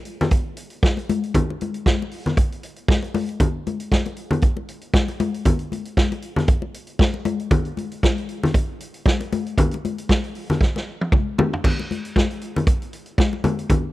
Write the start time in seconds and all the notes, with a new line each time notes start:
0.05 closed hi-hat
0.21 snare, closed hi-hat, low conga
0.31 kick, closed hi-hat, muted conga
0.57 closed hi-hat
0.70 closed hi-hat
0.83 kick, snare, high conga
0.97 closed hi-hat, muted conga
1.09 closed hi-hat, high conga
1.23 closed hi-hat
1.34 kick, closed hi-hat, muted conga, low conga
1.50 muted conga
1.61 closed hi-hat, high conga
1.74 closed hi-hat
1.86 kick, snare, muted conga, high conga
2.02 muted conga
2.11 open hi-hat
2.26 snare, closed hi-hat, low conga
2.37 kick, closed hi-hat, muted conga
2.52 closed hi-hat
2.63 closed hi-hat
2.76 closed hi-hat
2.88 kick, snare, high conga
3.03 closed hi-hat, muted conga
3.14 open hi-hat, high conga
3.29 closed hi-hat
3.40 kick, closed hi-hat, muted conga, low conga
3.67 closed hi-hat, high conga
3.80 closed hi-hat
3.92 kick, snare, high conga
4.05 closed hi-hat, muted conga
4.17 closed hi-hat
4.31 closed hi-hat, low conga
4.42 kick, closed hi-hat, muted conga
4.57 muted conga
4.69 closed hi-hat
4.81 closed hi-hat
4.94 kick, snare, high conga
5.08 closed hi-hat, muted conga
5.20 closed hi-hat, high conga
5.34 closed hi-hat
5.45 kick, closed hi-hat, muted conga, low conga
5.59 closed hi-hat
5.72 closed hi-hat, high conga
5.85 closed hi-hat
5.97 kick, snare, high conga
6.12 closed hi-hat, muted conga
6.22 closed hi-hat
6.36 snare, closed hi-hat, low conga
6.48 kick, closed hi-hat, muted conga
6.62 muted conga
6.74 closed hi-hat
6.87 closed hi-hat
6.99 kick, snare, muted conga, high conga
7.14 muted conga
7.25 closed hi-hat, high conga
7.40 closed hi-hat
7.51 kick, closed hi-hat, muted conga, low conga
7.65 closed hi-hat
7.77 closed hi-hat, high conga
7.92 closed hi-hat
8.03 kick, snare, muted conga, high conga
8.18 closed hi-hat
8.29 closed hi-hat
8.43 snare, closed hi-hat, low conga
8.54 kick, closed hi-hat, muted conga
8.80 closed hi-hat
8.94 closed hi-hat
9.06 kick, snare, muted conga, high conga
9.21 closed hi-hat, muted conga
9.32 closed hi-hat, high conga
9.46 closed hi-hat
9.58 kick, closed hi-hat, muted conga, low conga
9.71 closed hi-hat, muted conga
9.85 closed hi-hat, high conga
9.98 closed hi-hat
10.09 kick, snare, muted conga, high conga
10.24 closed hi-hat
10.35 open hi-hat
10.50 snare, closed hi-hat, low conga
10.61 kick, snare, muted conga
10.76 snare, muted conga
11.01 high tom
11.12 kick, mid tom, muted conga, high conga
11.38 floor tom, high conga, low conga
11.53 floor tom
11.64 kick, crash, low conga
11.79 muted conga
11.91 closed hi-hat, high conga
12.05 closed hi-hat
12.16 kick, snare, muted conga, high conga
12.31 closed hi-hat
12.41 closed hi-hat
12.56 closed hi-hat, low conga
12.67 kick, closed hi-hat, muted conga
12.82 closed hi-hat
12.93 closed hi-hat
13.06 closed hi-hat
13.18 kick, snare, muted conga, high conga
13.33 muted conga
13.44 closed hi-hat, high conga, low conga
13.59 closed hi-hat
13.70 kick, closed hi-hat, muted conga, low conga